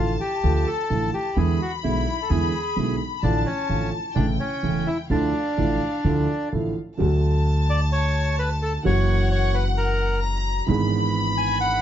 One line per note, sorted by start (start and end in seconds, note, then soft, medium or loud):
0.00 0.16 A1 soft
0.00 0.16 A2 soft
0.00 0.16 D3 soft
0.00 0.16 F3 soft
0.00 0.16 A3 soft
0.00 0.16 F4 soft
0.00 0.17 F4 medium
0.00 1.33 A5 medium
0.21 0.68 G4 medium
0.44 0.63 D2 medium
0.44 0.63 D3 medium
0.44 0.63 F3 soft
0.44 0.63 A3 soft
0.44 0.63 F4 medium
0.67 1.10 A4 medium
0.90 1.10 A1 soft
0.90 1.10 A2 soft
0.90 1.10 D3 soft
0.90 1.10 F3 soft
0.90 1.10 A3 soft
0.90 1.10 F4 soft
1.14 1.38 G4 medium
1.36 1.57 E2 medium
1.36 1.56 D3 medium
1.36 1.56 E3 medium
1.36 1.57 G#3 soft
1.36 1.57 B3 soft
1.36 1.57 E4 medium
1.36 1.61 G#4 medium
1.36 3.24 B5 medium
1.62 1.72 F#4 medium
1.84 2.04 B1 soft
1.84 2.04 B2 soft
1.84 2.04 D3 soft
1.84 2.04 G#3 soft
1.84 2.04 B3 soft
1.84 2.21 E4 medium
1.84 2.04 E4 soft
2.22 2.30 A4 soft
2.29 2.50 E2 medium
2.29 2.50 D3 soft
2.29 2.50 E3 medium
2.29 2.50 G#3 soft
2.29 2.50 B3 soft
2.29 2.50 E4 medium
2.29 2.96 G#4 medium
2.76 2.97 B1 soft
2.76 2.97 B2 soft
2.76 2.96 D3 soft
2.76 2.96 G#3 soft
2.76 2.97 B3 soft
2.76 2.97 E4 soft
3.23 3.43 A1 medium
3.23 3.44 A2 medium
3.23 3.43 D3 medium
3.23 3.44 F3 medium
3.23 3.43 A3 medium
3.23 3.48 D4 medium
3.23 3.43 F4 medium
3.23 4.17 A5 medium
3.46 3.90 C#4 medium
3.69 3.89 A1 soft
3.69 3.90 A1 soft
3.69 3.90 A2 soft
3.69 3.89 D3 soft
3.69 3.90 F3 soft
3.69 3.90 A3 soft
3.69 3.90 F4 soft
4.15 4.36 A1 medium
4.15 4.36 A2 medium
4.15 4.36 C#3 medium
4.15 4.36 E3 soft
4.15 4.36 A3 medium
4.15 4.26 D4 medium
4.15 4.36 E4 medium
4.15 5.10 G5 medium
4.40 4.88 C#4 medium
4.63 4.83 E1 soft
4.63 4.83 E2 soft
4.63 4.83 C#3 soft
4.63 4.83 E3 soft
4.63 4.83 A3 soft
4.63 4.83 E4 soft
4.87 4.98 E4 medium
5.10 5.30 D2 medium
5.10 5.30 D3 medium
5.10 5.30 F3 medium
5.10 5.30 A3 medium
5.10 6.49 D4 medium
5.10 5.30 E4 medium
5.10 6.72 F5 medium
5.58 5.77 A1 soft
5.58 5.78 A1 soft
5.58 5.78 A2 soft
5.58 5.77 D3 soft
5.58 5.78 F3 soft
5.58 5.78 A3 soft
5.58 5.78 E4 soft
6.05 6.25 D2 medium
6.05 6.25 D3 medium
6.05 6.25 F3 soft
6.05 6.25 A3 medium
6.05 6.25 E4 medium
6.52 6.73 A1 soft
6.52 6.73 A2 soft
6.52 6.72 D3 soft
6.52 6.73 F3 soft
6.52 6.73 A3 soft
6.52 6.73 E4 soft
6.97 8.76 D2 medium
6.97 8.76 D3 medium
6.97 8.76 F#3 soft
6.97 8.76 A3 soft
6.97 8.77 F#4 medium
6.97 8.81 A5 medium
7.70 7.80 D5 medium
7.93 8.36 C#5 medium
8.39 8.49 B4 medium
8.62 8.73 A4 medium
8.83 10.60 F#1 medium
8.83 10.59 F#2 medium
8.83 10.58 E3 medium
8.83 10.59 F#3 medium
8.83 10.59 A#3 medium
8.83 10.60 C#4 medium
8.83 10.60 F#4 medium
8.83 9.28 C#5 loud
8.83 10.19 F#5 medium
9.32 9.55 C#5 medium
9.54 9.65 B4 medium
9.77 10.20 A#4 medium
10.23 10.69 A#5 medium
10.66 11.82 G#1 medium
10.66 11.82 G#2 medium
10.66 11.82 E3 medium
10.66 11.82 B3 medium
10.66 11.82 D4 medium
10.66 11.82 G#4 medium
10.66 11.82 B5 loud
11.37 11.58 G#5 medium
11.61 11.82 F#5 medium